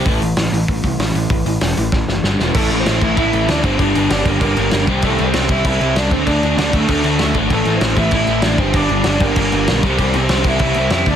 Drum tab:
CC |--------|--------|xxxxxxxx|xxxxxxxx|
HH |oooooooo|oooo----|--------|--------|
SD |--o---o-|--o-oooo|--o---o-|--o---o-|
BD |o---oo--|o---o---|o--oo--o|o--oo--o|

CC |xxxxxxxx|xxxxxxxx|xxxxxxxx|xxxxxxxx|
HH |--------|--------|--------|--------|
SD |--o---o-|--o---o-|--o---o-|--o---o-|
BD |o--oo--o|o--oo--o|o--oo--o|o--oo--o|

CC |xxxxxxxx|
HH |--------|
SD |--o---o-|
BD |o--oo--o|